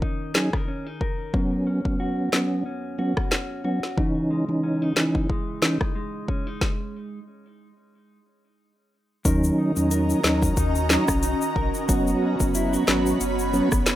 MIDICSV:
0, 0, Header, 1, 6, 480
1, 0, Start_track
1, 0, Tempo, 659341
1, 975, Time_signature, 4, 2, 24, 8
1, 10159, End_track
2, 0, Start_track
2, 0, Title_t, "Ambient pad"
2, 0, Program_c, 0, 92
2, 6736, Note_on_c, 0, 61, 81
2, 6736, Note_on_c, 0, 66, 74
2, 6736, Note_on_c, 0, 75, 74
2, 6736, Note_on_c, 0, 82, 88
2, 8636, Note_off_c, 0, 61, 0
2, 8636, Note_off_c, 0, 75, 0
2, 8636, Note_off_c, 0, 82, 0
2, 8655, Note_on_c, 0, 59, 79
2, 8655, Note_on_c, 0, 73, 73
2, 8655, Note_on_c, 0, 83, 87
2, 10159, Note_off_c, 0, 59, 0
2, 10159, Note_off_c, 0, 66, 0
2, 10159, Note_off_c, 0, 73, 0
2, 10159, Note_off_c, 0, 83, 0
2, 10159, End_track
3, 0, Start_track
3, 0, Title_t, "Clean electric guitar"
3, 0, Program_c, 1, 27
3, 0, Note_on_c, 1, 51, 81
3, 0, Note_on_c, 1, 61, 61
3, 0, Note_on_c, 1, 70, 65
3, 15, Note_on_c, 1, 63, 63
3, 252, Note_off_c, 1, 70, 0
3, 255, Note_on_c, 1, 68, 65
3, 390, Note_off_c, 1, 68, 0
3, 390, Note_on_c, 1, 70, 57
3, 492, Note_off_c, 1, 63, 0
3, 495, Note_off_c, 1, 61, 0
3, 495, Note_on_c, 1, 61, 63
3, 630, Note_off_c, 1, 61, 0
3, 630, Note_on_c, 1, 63, 51
3, 726, Note_off_c, 1, 70, 0
3, 734, Note_on_c, 1, 70, 63
3, 975, Note_off_c, 1, 51, 0
3, 975, Note_on_c, 1, 42, 81
3, 1028, Note_off_c, 1, 70, 0
3, 1029, Note_off_c, 1, 63, 0
3, 1215, Note_on_c, 1, 61, 59
3, 1454, Note_on_c, 1, 66, 64
3, 1694, Note_on_c, 1, 59, 61
3, 1931, Note_off_c, 1, 61, 0
3, 1934, Note_on_c, 1, 61, 62
3, 2166, Note_off_c, 1, 66, 0
3, 2174, Note_on_c, 1, 66, 64
3, 2411, Note_off_c, 1, 61, 0
3, 2414, Note_on_c, 1, 61, 60
3, 2646, Note_off_c, 1, 66, 0
3, 2654, Note_on_c, 1, 66, 65
3, 2894, Note_on_c, 1, 49, 80
3, 2895, Note_off_c, 1, 42, 0
3, 2948, Note_off_c, 1, 59, 0
3, 2948, Note_off_c, 1, 66, 0
3, 3134, Note_on_c, 1, 56, 61
3, 3371, Note_off_c, 1, 61, 0
3, 3374, Note_on_c, 1, 61, 65
3, 3509, Note_off_c, 1, 61, 0
3, 3509, Note_on_c, 1, 63, 58
3, 3615, Note_on_c, 1, 52, 61
3, 3851, Note_off_c, 1, 56, 0
3, 3854, Note_on_c, 1, 56, 60
3, 4085, Note_off_c, 1, 63, 0
3, 4094, Note_on_c, 1, 63, 65
3, 4331, Note_off_c, 1, 56, 0
3, 4334, Note_on_c, 1, 56, 64
3, 4571, Note_off_c, 1, 63, 0
3, 4574, Note_on_c, 1, 61, 64
3, 4709, Note_off_c, 1, 61, 0
3, 4709, Note_on_c, 1, 63, 57
3, 4814, Note_off_c, 1, 49, 0
3, 4868, Note_off_c, 1, 52, 0
3, 4869, Note_off_c, 1, 63, 0
3, 5233, Note_off_c, 1, 56, 0
3, 6735, Note_on_c, 1, 51, 83
3, 6740, Note_on_c, 1, 70, 69
3, 6976, Note_on_c, 1, 63, 62
3, 7207, Note_off_c, 1, 70, 0
3, 7216, Note_on_c, 1, 70, 73
3, 7456, Note_on_c, 1, 61, 61
3, 7687, Note_off_c, 1, 63, 0
3, 7696, Note_on_c, 1, 63, 63
3, 7933, Note_off_c, 1, 61, 0
3, 7935, Note_on_c, 1, 61, 61
3, 8167, Note_off_c, 1, 63, 0
3, 8175, Note_on_c, 1, 63, 66
3, 8407, Note_off_c, 1, 70, 0
3, 8416, Note_on_c, 1, 70, 68
3, 8655, Note_off_c, 1, 51, 0
3, 8655, Note_off_c, 1, 70, 0
3, 8655, Note_on_c, 1, 42, 89
3, 8659, Note_on_c, 1, 66, 73
3, 8709, Note_off_c, 1, 63, 0
3, 8895, Note_off_c, 1, 61, 0
3, 8895, Note_on_c, 1, 61, 61
3, 9132, Note_off_c, 1, 66, 0
3, 9135, Note_on_c, 1, 64, 71
3, 9269, Note_off_c, 1, 64, 0
3, 9269, Note_on_c, 1, 66, 59
3, 9374, Note_on_c, 1, 59, 64
3, 9611, Note_off_c, 1, 61, 0
3, 9614, Note_on_c, 1, 61, 66
3, 9846, Note_off_c, 1, 59, 0
3, 9855, Note_on_c, 1, 59, 62
3, 10091, Note_off_c, 1, 61, 0
3, 10094, Note_on_c, 1, 61, 66
3, 10159, Note_off_c, 1, 42, 0
3, 10159, Note_off_c, 1, 59, 0
3, 10159, Note_off_c, 1, 61, 0
3, 10159, Note_off_c, 1, 66, 0
3, 10159, End_track
4, 0, Start_track
4, 0, Title_t, "Tonewheel organ"
4, 0, Program_c, 2, 16
4, 252, Note_on_c, 2, 54, 76
4, 255, Note_on_c, 2, 61, 67
4, 257, Note_on_c, 2, 63, 82
4, 366, Note_off_c, 2, 54, 0
4, 368, Note_off_c, 2, 61, 0
4, 369, Note_off_c, 2, 63, 0
4, 972, Note_on_c, 2, 54, 84
4, 974, Note_on_c, 2, 59, 80
4, 976, Note_on_c, 2, 61, 93
4, 1315, Note_off_c, 2, 54, 0
4, 1317, Note_off_c, 2, 59, 0
4, 1318, Note_off_c, 2, 61, 0
4, 1346, Note_on_c, 2, 54, 73
4, 1348, Note_on_c, 2, 59, 67
4, 1350, Note_on_c, 2, 61, 79
4, 1668, Note_off_c, 2, 54, 0
4, 1669, Note_off_c, 2, 59, 0
4, 1670, Note_off_c, 2, 61, 0
4, 1692, Note_on_c, 2, 54, 70
4, 1695, Note_on_c, 2, 59, 68
4, 1697, Note_on_c, 2, 61, 80
4, 1917, Note_off_c, 2, 54, 0
4, 1918, Note_off_c, 2, 59, 0
4, 1919, Note_off_c, 2, 61, 0
4, 2172, Note_on_c, 2, 54, 73
4, 2174, Note_on_c, 2, 59, 69
4, 2177, Note_on_c, 2, 61, 85
4, 2287, Note_off_c, 2, 54, 0
4, 2288, Note_off_c, 2, 59, 0
4, 2289, Note_off_c, 2, 61, 0
4, 2652, Note_on_c, 2, 54, 74
4, 2655, Note_on_c, 2, 59, 67
4, 2656, Note_on_c, 2, 61, 84
4, 2766, Note_off_c, 2, 54, 0
4, 2768, Note_off_c, 2, 59, 0
4, 2769, Note_off_c, 2, 61, 0
4, 2892, Note_on_c, 2, 52, 90
4, 2894, Note_on_c, 2, 61, 78
4, 2896, Note_on_c, 2, 63, 101
4, 3236, Note_off_c, 2, 52, 0
4, 3237, Note_off_c, 2, 61, 0
4, 3238, Note_off_c, 2, 63, 0
4, 3267, Note_on_c, 2, 52, 74
4, 3269, Note_on_c, 2, 61, 69
4, 3271, Note_on_c, 2, 63, 82
4, 3588, Note_off_c, 2, 52, 0
4, 3589, Note_off_c, 2, 61, 0
4, 3590, Note_off_c, 2, 63, 0
4, 3612, Note_on_c, 2, 52, 72
4, 3615, Note_on_c, 2, 61, 65
4, 3617, Note_on_c, 2, 63, 82
4, 3837, Note_off_c, 2, 52, 0
4, 3838, Note_off_c, 2, 61, 0
4, 3839, Note_off_c, 2, 63, 0
4, 4093, Note_on_c, 2, 52, 78
4, 4095, Note_on_c, 2, 61, 72
4, 4097, Note_on_c, 2, 63, 80
4, 4207, Note_off_c, 2, 52, 0
4, 4208, Note_off_c, 2, 61, 0
4, 4209, Note_off_c, 2, 63, 0
4, 6733, Note_on_c, 2, 54, 90
4, 6735, Note_on_c, 2, 61, 83
4, 6737, Note_on_c, 2, 63, 101
4, 7076, Note_off_c, 2, 54, 0
4, 7077, Note_off_c, 2, 61, 0
4, 7078, Note_off_c, 2, 63, 0
4, 7107, Note_on_c, 2, 54, 79
4, 7109, Note_on_c, 2, 61, 67
4, 7111, Note_on_c, 2, 63, 81
4, 7429, Note_off_c, 2, 54, 0
4, 7430, Note_off_c, 2, 61, 0
4, 7431, Note_off_c, 2, 63, 0
4, 7452, Note_on_c, 2, 54, 78
4, 7454, Note_on_c, 2, 61, 70
4, 7456, Note_on_c, 2, 63, 83
4, 7677, Note_off_c, 2, 54, 0
4, 7678, Note_off_c, 2, 61, 0
4, 7679, Note_off_c, 2, 63, 0
4, 7932, Note_on_c, 2, 54, 76
4, 7934, Note_on_c, 2, 61, 70
4, 7937, Note_on_c, 2, 63, 84
4, 8046, Note_off_c, 2, 54, 0
4, 8048, Note_off_c, 2, 61, 0
4, 8049, Note_off_c, 2, 63, 0
4, 8653, Note_on_c, 2, 54, 94
4, 8655, Note_on_c, 2, 59, 86
4, 8657, Note_on_c, 2, 61, 102
4, 8996, Note_off_c, 2, 54, 0
4, 8997, Note_off_c, 2, 59, 0
4, 8998, Note_off_c, 2, 61, 0
4, 9027, Note_on_c, 2, 54, 75
4, 9029, Note_on_c, 2, 59, 71
4, 9031, Note_on_c, 2, 61, 82
4, 9348, Note_off_c, 2, 54, 0
4, 9350, Note_off_c, 2, 59, 0
4, 9351, Note_off_c, 2, 61, 0
4, 9372, Note_on_c, 2, 54, 75
4, 9375, Note_on_c, 2, 59, 69
4, 9377, Note_on_c, 2, 61, 86
4, 9597, Note_off_c, 2, 54, 0
4, 9598, Note_off_c, 2, 59, 0
4, 9599, Note_off_c, 2, 61, 0
4, 9852, Note_on_c, 2, 54, 83
4, 9855, Note_on_c, 2, 59, 71
4, 9856, Note_on_c, 2, 61, 91
4, 9966, Note_off_c, 2, 54, 0
4, 9968, Note_off_c, 2, 59, 0
4, 9968, Note_off_c, 2, 61, 0
4, 10159, End_track
5, 0, Start_track
5, 0, Title_t, "Sub bass"
5, 0, Program_c, 3, 38
5, 6735, Note_on_c, 3, 39, 98
5, 6923, Note_off_c, 3, 39, 0
5, 7110, Note_on_c, 3, 40, 84
5, 7380, Note_off_c, 3, 40, 0
5, 7455, Note_on_c, 3, 39, 95
5, 7643, Note_off_c, 3, 39, 0
5, 7696, Note_on_c, 3, 39, 110
5, 7989, Note_off_c, 3, 39, 0
5, 8070, Note_on_c, 3, 35, 94
5, 8257, Note_off_c, 3, 35, 0
5, 8415, Note_on_c, 3, 34, 93
5, 8520, Note_off_c, 3, 34, 0
5, 8655, Note_on_c, 3, 30, 103
5, 8843, Note_off_c, 3, 30, 0
5, 9029, Note_on_c, 3, 30, 93
5, 9300, Note_off_c, 3, 30, 0
5, 9375, Note_on_c, 3, 32, 90
5, 9563, Note_off_c, 3, 32, 0
5, 9614, Note_on_c, 3, 30, 107
5, 9908, Note_off_c, 3, 30, 0
5, 9989, Note_on_c, 3, 32, 91
5, 10072, Note_off_c, 3, 32, 0
5, 10159, End_track
6, 0, Start_track
6, 0, Title_t, "Drums"
6, 15, Note_on_c, 9, 36, 90
6, 88, Note_off_c, 9, 36, 0
6, 254, Note_on_c, 9, 38, 117
6, 262, Note_on_c, 9, 39, 93
6, 327, Note_off_c, 9, 38, 0
6, 335, Note_off_c, 9, 39, 0
6, 388, Note_on_c, 9, 37, 91
6, 389, Note_on_c, 9, 36, 94
6, 460, Note_off_c, 9, 37, 0
6, 462, Note_off_c, 9, 36, 0
6, 734, Note_on_c, 9, 36, 87
6, 807, Note_off_c, 9, 36, 0
6, 974, Note_on_c, 9, 36, 112
6, 1047, Note_off_c, 9, 36, 0
6, 1348, Note_on_c, 9, 36, 93
6, 1421, Note_off_c, 9, 36, 0
6, 1695, Note_on_c, 9, 38, 102
6, 1704, Note_on_c, 9, 39, 81
6, 1768, Note_off_c, 9, 38, 0
6, 1777, Note_off_c, 9, 39, 0
6, 2307, Note_on_c, 9, 37, 95
6, 2309, Note_on_c, 9, 36, 96
6, 2380, Note_off_c, 9, 37, 0
6, 2382, Note_off_c, 9, 36, 0
6, 2414, Note_on_c, 9, 38, 103
6, 2422, Note_on_c, 9, 39, 83
6, 2487, Note_off_c, 9, 38, 0
6, 2495, Note_off_c, 9, 39, 0
6, 2790, Note_on_c, 9, 38, 64
6, 2863, Note_off_c, 9, 38, 0
6, 2894, Note_on_c, 9, 36, 115
6, 2967, Note_off_c, 9, 36, 0
6, 3615, Note_on_c, 9, 38, 105
6, 3624, Note_on_c, 9, 39, 83
6, 3688, Note_off_c, 9, 38, 0
6, 3697, Note_off_c, 9, 39, 0
6, 3748, Note_on_c, 9, 36, 87
6, 3821, Note_off_c, 9, 36, 0
6, 3855, Note_on_c, 9, 36, 91
6, 3928, Note_off_c, 9, 36, 0
6, 4094, Note_on_c, 9, 38, 112
6, 4103, Note_on_c, 9, 39, 95
6, 4167, Note_off_c, 9, 38, 0
6, 4175, Note_off_c, 9, 39, 0
6, 4228, Note_on_c, 9, 37, 95
6, 4229, Note_on_c, 9, 36, 89
6, 4301, Note_off_c, 9, 37, 0
6, 4302, Note_off_c, 9, 36, 0
6, 4575, Note_on_c, 9, 36, 86
6, 4648, Note_off_c, 9, 36, 0
6, 4815, Note_on_c, 9, 36, 102
6, 4815, Note_on_c, 9, 38, 92
6, 4888, Note_off_c, 9, 36, 0
6, 4888, Note_off_c, 9, 38, 0
6, 6735, Note_on_c, 9, 36, 118
6, 6735, Note_on_c, 9, 42, 82
6, 6735, Note_on_c, 9, 82, 74
6, 6808, Note_off_c, 9, 36, 0
6, 6808, Note_off_c, 9, 42, 0
6, 6808, Note_off_c, 9, 82, 0
6, 6870, Note_on_c, 9, 82, 55
6, 6943, Note_off_c, 9, 82, 0
6, 7108, Note_on_c, 9, 82, 74
6, 7181, Note_off_c, 9, 82, 0
6, 7214, Note_on_c, 9, 82, 76
6, 7216, Note_on_c, 9, 42, 72
6, 7287, Note_off_c, 9, 82, 0
6, 7289, Note_off_c, 9, 42, 0
6, 7350, Note_on_c, 9, 82, 62
6, 7423, Note_off_c, 9, 82, 0
6, 7454, Note_on_c, 9, 82, 47
6, 7456, Note_on_c, 9, 38, 109
6, 7464, Note_on_c, 9, 39, 87
6, 7526, Note_off_c, 9, 82, 0
6, 7529, Note_off_c, 9, 38, 0
6, 7537, Note_off_c, 9, 39, 0
6, 7589, Note_on_c, 9, 36, 91
6, 7590, Note_on_c, 9, 82, 78
6, 7662, Note_off_c, 9, 36, 0
6, 7663, Note_off_c, 9, 82, 0
6, 7693, Note_on_c, 9, 82, 74
6, 7695, Note_on_c, 9, 42, 75
6, 7696, Note_on_c, 9, 36, 96
6, 7766, Note_off_c, 9, 82, 0
6, 7768, Note_off_c, 9, 36, 0
6, 7768, Note_off_c, 9, 42, 0
6, 7828, Note_on_c, 9, 82, 51
6, 7901, Note_off_c, 9, 82, 0
6, 7934, Note_on_c, 9, 38, 119
6, 7934, Note_on_c, 9, 82, 60
6, 7943, Note_on_c, 9, 39, 98
6, 8007, Note_off_c, 9, 38, 0
6, 8007, Note_off_c, 9, 82, 0
6, 8016, Note_off_c, 9, 39, 0
6, 8067, Note_on_c, 9, 82, 73
6, 8068, Note_on_c, 9, 37, 96
6, 8069, Note_on_c, 9, 36, 94
6, 8140, Note_off_c, 9, 82, 0
6, 8141, Note_off_c, 9, 37, 0
6, 8142, Note_off_c, 9, 36, 0
6, 8173, Note_on_c, 9, 42, 76
6, 8175, Note_on_c, 9, 82, 64
6, 8246, Note_off_c, 9, 42, 0
6, 8248, Note_off_c, 9, 82, 0
6, 8310, Note_on_c, 9, 82, 60
6, 8383, Note_off_c, 9, 82, 0
6, 8415, Note_on_c, 9, 36, 93
6, 8488, Note_off_c, 9, 36, 0
6, 8549, Note_on_c, 9, 82, 58
6, 8622, Note_off_c, 9, 82, 0
6, 8654, Note_on_c, 9, 82, 75
6, 8655, Note_on_c, 9, 36, 119
6, 8655, Note_on_c, 9, 42, 81
6, 8727, Note_off_c, 9, 36, 0
6, 8727, Note_off_c, 9, 82, 0
6, 8728, Note_off_c, 9, 42, 0
6, 8789, Note_on_c, 9, 82, 54
6, 8862, Note_off_c, 9, 82, 0
6, 9027, Note_on_c, 9, 82, 75
6, 9029, Note_on_c, 9, 36, 100
6, 9099, Note_off_c, 9, 82, 0
6, 9102, Note_off_c, 9, 36, 0
6, 9133, Note_on_c, 9, 82, 74
6, 9136, Note_on_c, 9, 42, 73
6, 9206, Note_off_c, 9, 82, 0
6, 9208, Note_off_c, 9, 42, 0
6, 9270, Note_on_c, 9, 82, 59
6, 9342, Note_off_c, 9, 82, 0
6, 9373, Note_on_c, 9, 82, 49
6, 9375, Note_on_c, 9, 38, 107
6, 9384, Note_on_c, 9, 39, 86
6, 9446, Note_off_c, 9, 82, 0
6, 9448, Note_off_c, 9, 38, 0
6, 9456, Note_off_c, 9, 39, 0
6, 9509, Note_on_c, 9, 82, 75
6, 9582, Note_off_c, 9, 82, 0
6, 9613, Note_on_c, 9, 82, 73
6, 9616, Note_on_c, 9, 42, 74
6, 9686, Note_off_c, 9, 82, 0
6, 9688, Note_off_c, 9, 42, 0
6, 9748, Note_on_c, 9, 82, 52
6, 9821, Note_off_c, 9, 82, 0
6, 9854, Note_on_c, 9, 82, 60
6, 9927, Note_off_c, 9, 82, 0
6, 9986, Note_on_c, 9, 82, 72
6, 9987, Note_on_c, 9, 37, 99
6, 9989, Note_on_c, 9, 36, 99
6, 10059, Note_off_c, 9, 82, 0
6, 10060, Note_off_c, 9, 37, 0
6, 10062, Note_off_c, 9, 36, 0
6, 10092, Note_on_c, 9, 42, 77
6, 10093, Note_on_c, 9, 38, 104
6, 10094, Note_on_c, 9, 82, 61
6, 10102, Note_on_c, 9, 39, 88
6, 10159, Note_off_c, 9, 38, 0
6, 10159, Note_off_c, 9, 39, 0
6, 10159, Note_off_c, 9, 42, 0
6, 10159, Note_off_c, 9, 82, 0
6, 10159, End_track
0, 0, End_of_file